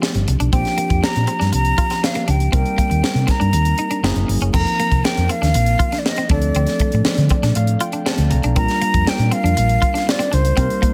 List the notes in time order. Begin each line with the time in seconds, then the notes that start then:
Already playing: F3 A3 D4 D#4 G4
0.02 C4, snare
0.14 G1, closed hi-hat
0.28 C2, muted clean electric guitar stroke, closed hi-hat
0.40 B1 D4, closed hi-hat
0.52 A#1 F3 A#3 C4 D4 G4 G5, kick, closed hi-hat
0.65 snare, closed hi-hat
0.78 A#3, closed hi-hat
0.90 F2, muted clean electric guitar stroke, kick, closed hi-hat
1.03 A#5, muted clean electric guitar stroke, snare
1.16 A#2, closed hi-hat
1.27 C4, closed hi-hat
1.40 G2 D4, snare, closed hi-hat
1.52 C2 A#5, muted clean electric guitar stroke, closed hi-hat
1.65 closed hi-hat
1.78 F4, kick, closed hi-hat
1.90 C4, snare, closed hi-hat
2.03 F5, muted clean electric guitar stroke, snare
2.15 A#3, closed hi-hat
2.28 C#2 D4 G5, closed hi-hat
2.40 closed hi-hat
2.52 C2 G3 A#3 C4 D#4 A#4 G5, kick, closed hi-hat
2.66 closed hi-hat
2.78 A#3, kick, closed hi-hat
2.90 D#2, muted clean electric guitar stroke, closed hi-hat
3.03 muted fingered electric bass stroke, muted clean electric guitar stroke, snare
3.15 C3, closed hi-hat
3.27 C4 A#5, kick, snare, closed hi-hat
3.40 G2 D4, closed hi-hat
3.53 D#2, muted clean electric guitar stroke, closed hi-hat
3.65 closed hi-hat
3.78 D#4, closed hi-hat
3.91 D4, closed hi-hat
4.03 F#1 F#3 A#3 C4 C#4 E4 G#4, snare
4.16 F#1, closed hi-hat
4.28 G1, muted clean electric guitar stroke, open hi-hat
4.41 F#1 C#4, closed hi-hat
4.53 F1 F3 A#3 C4 D#4 A4 A#5, kick, crash
4.61 A#4
4.67 closed hi-hat
4.80 A#3, closed hi-hat
4.92 C2, muted clean electric guitar stroke, kick, closed hi-hat
5.04 G5, muted clean electric guitar stroke, snare
5.17 F2, closed hi-hat
5.29 C4 F5, closed hi-hat
5.42 D#2 D4, snare, closed hi-hat
5.54 A#1, muted clean electric guitar stroke, closed hi-hat
5.66 closed hi-hat
5.79 F4, kick, closed hi-hat
5.92 D4, snare, closed hi-hat
5.99 D5
6.06 D#5, muted clean electric guitar stroke, snare
6.16 C4, closed hi-hat
6.29 D2 F3 A3 C4 D4 A4 D5, kick, closed hi-hat
6.42 closed hi-hat
6.54 D2 C4, closed hi-hat
6.67 snare, closed hi-hat
6.79 A3, kick, closed hi-hat
6.92 A2, muted clean electric guitar stroke, closed hi-hat
7.05 muted fingered electric bass stroke, muted clean electric guitar stroke, snare
7.18 D3, closed hi-hat
7.29 C4 D5, kick, closed hi-hat
7.43 A#2 D4, snare, closed hi-hat
7.55 A2 F5, muted clean electric guitar stroke, closed hi-hat
7.67 closed hi-hat
7.80 F4 G5, closed hi-hat
7.92 D4, closed hi-hat
8.06 C4 A5, snare
8.18 D2, closed hi-hat
8.30 C2 A#5, muted clean electric guitar stroke, closed hi-hat
8.43 B1 D4, closed hi-hat
8.55 A#1 G3 A#3 C4 D4 F4 A#4 A#5, kick, closed hi-hat
8.68 snare, closed hi-hat
8.82 A#3, closed hi-hat
8.94 F2, muted clean electric guitar stroke, kick, closed hi-hat
9.07 G5, muted clean electric guitar stroke, muted fingered electric bass stroke, snare
9.19 A#2, closed hi-hat
9.31 C4 F5, closed hi-hat
9.44 F2 D4, closed hi-hat
9.57 A#1, muted clean electric guitar stroke, closed hi-hat
9.69 closed hi-hat
9.82 F4, kick, closed hi-hat
9.94 D4, snare, closed hi-hat
10.07 D5, muted clean electric guitar stroke, snare
10.19 C4, closed hi-hat
10.32 C#2 D4 C5, closed hi-hat
10.45 closed hi-hat
10.56 C2 G3 A#3 C4 D#4 A#4, kick, closed hi-hat
10.70 closed hi-hat
10.82 A#3, kick, closed hi-hat